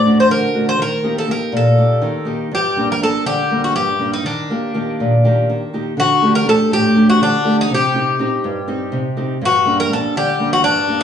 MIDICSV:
0, 0, Header, 1, 3, 480
1, 0, Start_track
1, 0, Tempo, 492207
1, 780, Time_signature, 7, 3, 24, 8
1, 10757, End_track
2, 0, Start_track
2, 0, Title_t, "Bouzouki"
2, 0, Program_c, 0, 25
2, 0, Note_on_c, 0, 74, 88
2, 191, Note_off_c, 0, 74, 0
2, 195, Note_on_c, 0, 72, 74
2, 300, Note_off_c, 0, 72, 0
2, 304, Note_on_c, 0, 70, 82
2, 637, Note_off_c, 0, 70, 0
2, 671, Note_on_c, 0, 72, 81
2, 789, Note_off_c, 0, 72, 0
2, 799, Note_on_c, 0, 70, 81
2, 1151, Note_off_c, 0, 70, 0
2, 1155, Note_on_c, 0, 69, 67
2, 1271, Note_off_c, 0, 69, 0
2, 1279, Note_on_c, 0, 70, 75
2, 1494, Note_off_c, 0, 70, 0
2, 1527, Note_on_c, 0, 69, 67
2, 2195, Note_off_c, 0, 69, 0
2, 2484, Note_on_c, 0, 67, 87
2, 2808, Note_off_c, 0, 67, 0
2, 2846, Note_on_c, 0, 70, 81
2, 2946, Note_off_c, 0, 70, 0
2, 2958, Note_on_c, 0, 69, 79
2, 3173, Note_off_c, 0, 69, 0
2, 3183, Note_on_c, 0, 67, 84
2, 3548, Note_off_c, 0, 67, 0
2, 3552, Note_on_c, 0, 66, 73
2, 3659, Note_off_c, 0, 66, 0
2, 3663, Note_on_c, 0, 67, 75
2, 3997, Note_off_c, 0, 67, 0
2, 4032, Note_on_c, 0, 63, 75
2, 4139, Note_off_c, 0, 63, 0
2, 4153, Note_on_c, 0, 62, 65
2, 5549, Note_off_c, 0, 62, 0
2, 5848, Note_on_c, 0, 66, 84
2, 6171, Note_off_c, 0, 66, 0
2, 6195, Note_on_c, 0, 70, 81
2, 6301, Note_off_c, 0, 70, 0
2, 6329, Note_on_c, 0, 69, 81
2, 6540, Note_off_c, 0, 69, 0
2, 6566, Note_on_c, 0, 67, 89
2, 6915, Note_off_c, 0, 67, 0
2, 6919, Note_on_c, 0, 66, 83
2, 7023, Note_off_c, 0, 66, 0
2, 7048, Note_on_c, 0, 62, 79
2, 7371, Note_off_c, 0, 62, 0
2, 7422, Note_on_c, 0, 63, 79
2, 7515, Note_off_c, 0, 63, 0
2, 7552, Note_on_c, 0, 67, 72
2, 8928, Note_off_c, 0, 67, 0
2, 9220, Note_on_c, 0, 66, 85
2, 9536, Note_off_c, 0, 66, 0
2, 9556, Note_on_c, 0, 70, 83
2, 9661, Note_off_c, 0, 70, 0
2, 9687, Note_on_c, 0, 69, 81
2, 9898, Note_off_c, 0, 69, 0
2, 9920, Note_on_c, 0, 67, 85
2, 10264, Note_off_c, 0, 67, 0
2, 10268, Note_on_c, 0, 66, 82
2, 10372, Note_off_c, 0, 66, 0
2, 10376, Note_on_c, 0, 62, 81
2, 10748, Note_off_c, 0, 62, 0
2, 10757, End_track
3, 0, Start_track
3, 0, Title_t, "Nylon-string guitar"
3, 0, Program_c, 1, 24
3, 0, Note_on_c, 1, 45, 60
3, 56, Note_on_c, 1, 57, 41
3, 62, Note_on_c, 1, 62, 39
3, 62, Note_on_c, 1, 66, 48
3, 279, Note_off_c, 1, 45, 0
3, 292, Note_on_c, 1, 50, 53
3, 442, Note_off_c, 1, 57, 0
3, 444, Note_off_c, 1, 62, 0
3, 445, Note_off_c, 1, 66, 0
3, 530, Note_on_c, 1, 57, 41
3, 536, Note_on_c, 1, 66, 49
3, 537, Note_on_c, 1, 62, 38
3, 727, Note_off_c, 1, 57, 0
3, 729, Note_off_c, 1, 62, 0
3, 729, Note_off_c, 1, 66, 0
3, 760, Note_off_c, 1, 50, 0
3, 763, Note_on_c, 1, 51, 63
3, 1006, Note_on_c, 1, 58, 45
3, 1016, Note_on_c, 1, 63, 44
3, 1019, Note_on_c, 1, 67, 51
3, 1230, Note_off_c, 1, 58, 0
3, 1235, Note_off_c, 1, 63, 0
3, 1237, Note_off_c, 1, 51, 0
3, 1242, Note_on_c, 1, 58, 42
3, 1243, Note_off_c, 1, 67, 0
3, 1247, Note_on_c, 1, 63, 39
3, 1255, Note_on_c, 1, 67, 54
3, 1484, Note_on_c, 1, 46, 65
3, 1633, Note_off_c, 1, 58, 0
3, 1636, Note_off_c, 1, 63, 0
3, 1641, Note_off_c, 1, 67, 0
3, 1729, Note_on_c, 1, 58, 41
3, 1734, Note_on_c, 1, 63, 38
3, 1739, Note_on_c, 1, 67, 50
3, 1957, Note_off_c, 1, 46, 0
3, 1966, Note_on_c, 1, 51, 62
3, 2119, Note_off_c, 1, 58, 0
3, 2119, Note_off_c, 1, 63, 0
3, 2123, Note_off_c, 1, 67, 0
3, 2195, Note_on_c, 1, 58, 45
3, 2205, Note_on_c, 1, 63, 41
3, 2211, Note_on_c, 1, 67, 50
3, 2397, Note_off_c, 1, 58, 0
3, 2403, Note_off_c, 1, 63, 0
3, 2405, Note_off_c, 1, 67, 0
3, 2438, Note_off_c, 1, 51, 0
3, 2452, Note_on_c, 1, 43, 64
3, 2695, Note_on_c, 1, 55, 49
3, 2702, Note_on_c, 1, 58, 44
3, 2704, Note_on_c, 1, 62, 53
3, 2922, Note_off_c, 1, 43, 0
3, 2922, Note_off_c, 1, 55, 0
3, 2923, Note_off_c, 1, 58, 0
3, 2923, Note_off_c, 1, 62, 0
3, 2932, Note_on_c, 1, 55, 42
3, 2936, Note_on_c, 1, 58, 43
3, 2941, Note_on_c, 1, 62, 54
3, 3173, Note_on_c, 1, 50, 59
3, 3321, Note_off_c, 1, 55, 0
3, 3321, Note_off_c, 1, 62, 0
3, 3322, Note_off_c, 1, 58, 0
3, 3416, Note_on_c, 1, 55, 45
3, 3419, Note_on_c, 1, 58, 40
3, 3423, Note_on_c, 1, 62, 44
3, 3642, Note_off_c, 1, 50, 0
3, 3655, Note_on_c, 1, 43, 55
3, 3802, Note_off_c, 1, 55, 0
3, 3805, Note_off_c, 1, 58, 0
3, 3805, Note_off_c, 1, 62, 0
3, 3893, Note_on_c, 1, 55, 45
3, 3894, Note_on_c, 1, 58, 36
3, 3901, Note_on_c, 1, 62, 47
3, 4088, Note_off_c, 1, 58, 0
3, 4089, Note_off_c, 1, 55, 0
3, 4093, Note_off_c, 1, 62, 0
3, 4124, Note_off_c, 1, 43, 0
3, 4135, Note_on_c, 1, 51, 60
3, 4386, Note_off_c, 1, 51, 0
3, 4389, Note_on_c, 1, 58, 45
3, 4398, Note_on_c, 1, 51, 39
3, 4402, Note_on_c, 1, 67, 46
3, 4611, Note_off_c, 1, 58, 0
3, 4614, Note_off_c, 1, 51, 0
3, 4618, Note_off_c, 1, 67, 0
3, 4625, Note_on_c, 1, 58, 43
3, 4626, Note_on_c, 1, 51, 43
3, 4630, Note_on_c, 1, 67, 47
3, 4877, Note_on_c, 1, 46, 59
3, 5007, Note_off_c, 1, 58, 0
3, 5008, Note_off_c, 1, 51, 0
3, 5011, Note_off_c, 1, 67, 0
3, 5113, Note_on_c, 1, 51, 39
3, 5119, Note_on_c, 1, 58, 42
3, 5119, Note_on_c, 1, 67, 50
3, 5336, Note_off_c, 1, 46, 0
3, 5347, Note_off_c, 1, 51, 0
3, 5359, Note_on_c, 1, 51, 55
3, 5495, Note_off_c, 1, 58, 0
3, 5496, Note_off_c, 1, 67, 0
3, 5593, Note_on_c, 1, 58, 40
3, 5597, Note_on_c, 1, 63, 38
3, 5598, Note_on_c, 1, 67, 44
3, 5781, Note_off_c, 1, 58, 0
3, 5782, Note_off_c, 1, 63, 0
3, 5784, Note_off_c, 1, 67, 0
3, 5816, Note_off_c, 1, 51, 0
3, 5821, Note_on_c, 1, 50, 62
3, 6059, Note_on_c, 1, 57, 44
3, 6065, Note_on_c, 1, 62, 42
3, 6072, Note_on_c, 1, 67, 56
3, 6282, Note_off_c, 1, 57, 0
3, 6287, Note_off_c, 1, 67, 0
3, 6288, Note_off_c, 1, 50, 0
3, 6291, Note_off_c, 1, 62, 0
3, 6294, Note_on_c, 1, 57, 46
3, 6301, Note_on_c, 1, 67, 54
3, 6302, Note_on_c, 1, 62, 39
3, 6545, Note_on_c, 1, 45, 66
3, 6681, Note_off_c, 1, 57, 0
3, 6684, Note_off_c, 1, 67, 0
3, 6686, Note_off_c, 1, 62, 0
3, 6779, Note_on_c, 1, 57, 46
3, 6784, Note_on_c, 1, 62, 45
3, 6789, Note_on_c, 1, 67, 54
3, 7009, Note_off_c, 1, 45, 0
3, 7031, Note_on_c, 1, 50, 62
3, 7165, Note_off_c, 1, 57, 0
3, 7167, Note_off_c, 1, 62, 0
3, 7170, Note_off_c, 1, 67, 0
3, 7261, Note_on_c, 1, 57, 44
3, 7264, Note_on_c, 1, 62, 44
3, 7266, Note_on_c, 1, 67, 48
3, 7454, Note_off_c, 1, 62, 0
3, 7455, Note_off_c, 1, 57, 0
3, 7457, Note_off_c, 1, 67, 0
3, 7493, Note_off_c, 1, 50, 0
3, 7510, Note_on_c, 1, 48, 64
3, 7743, Note_on_c, 1, 60, 50
3, 7751, Note_on_c, 1, 63, 41
3, 7759, Note_on_c, 1, 67, 51
3, 7972, Note_off_c, 1, 48, 0
3, 7978, Note_off_c, 1, 60, 0
3, 7986, Note_off_c, 1, 63, 0
3, 7989, Note_on_c, 1, 60, 49
3, 7994, Note_off_c, 1, 67, 0
3, 7998, Note_on_c, 1, 63, 45
3, 8005, Note_on_c, 1, 67, 53
3, 8232, Note_on_c, 1, 43, 67
3, 8370, Note_off_c, 1, 60, 0
3, 8376, Note_off_c, 1, 63, 0
3, 8380, Note_off_c, 1, 67, 0
3, 8460, Note_on_c, 1, 60, 49
3, 8464, Note_on_c, 1, 63, 42
3, 8466, Note_on_c, 1, 67, 52
3, 8692, Note_off_c, 1, 43, 0
3, 8697, Note_on_c, 1, 48, 60
3, 8845, Note_off_c, 1, 60, 0
3, 8847, Note_off_c, 1, 67, 0
3, 8848, Note_off_c, 1, 63, 0
3, 8941, Note_on_c, 1, 60, 49
3, 8941, Note_on_c, 1, 63, 40
3, 8947, Note_on_c, 1, 67, 49
3, 9132, Note_off_c, 1, 63, 0
3, 9133, Note_off_c, 1, 60, 0
3, 9137, Note_off_c, 1, 67, 0
3, 9164, Note_off_c, 1, 48, 0
3, 9181, Note_on_c, 1, 43, 62
3, 9412, Note_on_c, 1, 55, 46
3, 9417, Note_on_c, 1, 58, 44
3, 9425, Note_on_c, 1, 62, 55
3, 9647, Note_off_c, 1, 43, 0
3, 9651, Note_off_c, 1, 55, 0
3, 9651, Note_off_c, 1, 58, 0
3, 9658, Note_off_c, 1, 62, 0
3, 9662, Note_on_c, 1, 55, 45
3, 9664, Note_on_c, 1, 58, 44
3, 9670, Note_on_c, 1, 62, 54
3, 9905, Note_on_c, 1, 50, 66
3, 10046, Note_off_c, 1, 55, 0
3, 10046, Note_off_c, 1, 58, 0
3, 10050, Note_off_c, 1, 62, 0
3, 10137, Note_on_c, 1, 55, 49
3, 10138, Note_on_c, 1, 58, 38
3, 10142, Note_on_c, 1, 62, 52
3, 10368, Note_off_c, 1, 50, 0
3, 10378, Note_on_c, 1, 43, 60
3, 10521, Note_off_c, 1, 58, 0
3, 10522, Note_off_c, 1, 55, 0
3, 10525, Note_off_c, 1, 62, 0
3, 10605, Note_on_c, 1, 55, 45
3, 10609, Note_on_c, 1, 58, 39
3, 10610, Note_on_c, 1, 62, 48
3, 10757, Note_off_c, 1, 43, 0
3, 10757, Note_off_c, 1, 55, 0
3, 10757, Note_off_c, 1, 58, 0
3, 10757, Note_off_c, 1, 62, 0
3, 10757, End_track
0, 0, End_of_file